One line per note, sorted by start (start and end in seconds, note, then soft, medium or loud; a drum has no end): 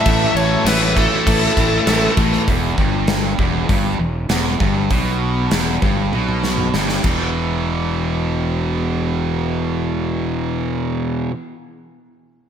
0.00 2.44 A3 medium
0.00 0.32 A4 medium
0.00 2.44 B4 loud
0.00 0.36 E5 loud
0.05 0.26 A1 loud
0.05 0.65 A2 medium
0.05 0.65 E3 medium
0.05 0.66 A3 loud
0.05 2.45 F#4 medium
0.05 kick loud
0.05 crash medium
0.35 0.55 A1 loud
0.35 0.64 A4 medium
0.35 0.67 C#5 medium
0.35 crash medium
0.65 1.06 A1 loud
0.65 0.96 A2 medium
0.65 0.96 E3 medium
0.65 0.97 A3 medium
0.65 0.93 E4 medium
0.65 0.97 B4 medium
0.65 snare loud
0.65 crash loud
0.95 1.26 A2 medium
0.95 1.26 E3 loud
0.95 1.26 A3 loud
0.95 2.12 E4 medium
0.95 2.14 A4 medium
0.95 kick medium
0.95 crash medium
1.27 1.47 A1 medium
1.27 1.86 A2 medium
1.27 1.87 E3 loud
1.27 1.87 A3 loud
1.27 kick loud
1.27 crash loud
1.57 1.77 A1 medium
1.57 kick medium
1.57 crash medium
1.87 2.07 A1 medium
1.87 2.16 A2 medium
1.87 2.17 E3 medium
1.87 2.17 A3 medium
1.87 snare loud
1.87 crash medium
2.17 2.37 A1 loud
2.17 2.46 A2 medium
2.17 2.46 E3 medium
2.17 2.46 A3 medium
2.17 kick medium
2.17 crash medium
2.33 snare soft
2.48 2.76 E1 medium
2.48 2.77 E2 loud
2.48 kick medium
2.48 open hi-hat soft
2.78 3.34 G1 medium
2.78 3.37 G2 medium
2.78 kick medium
3.08 snare loud
3.08 open hi-hat soft
3.38 3.67 E1 medium
3.38 3.68 E2 loud
3.38 kick loud
3.69 3.97 G1 medium
3.69 3.98 G2 medium
3.69 kick loud
3.69 open hi-hat soft
3.99 4.27 E1 medium
3.99 4.24 E2 medium
4.29 4.58 E1 medium
4.29 4.59 E2 medium
4.29 snare medium
4.29 open hi-hat soft
4.60 4.88 G1 loud
4.60 4.90 G2 medium
4.60 kick loud
4.90 5.47 B1 medium
4.90 5.51 B2 medium
4.90 kick medium
4.90 open hi-hat soft
5.51 5.80 E1 medium
5.51 5.81 E2 medium
5.51 snare loud
5.51 open hi-hat soft
5.82 6.11 G1 medium
5.82 6.12 G2 loud
5.82 kick medium
6.12 6.70 B1 medium
6.12 6.73 B2 medium
6.12 high tom medium
6.28 high tom soft
6.44 snare medium
6.58 mid tom medium
6.74 7.03 G1 medium
6.74 7.03 G2 medium
6.74 snare medium
6.89 snare medium
7.03 11.27 E1 medium
7.03 11.31 E2 medium
7.03 11.32 B2 medium
7.03 11.33 E3 medium
7.03 kick medium
7.03 crash medium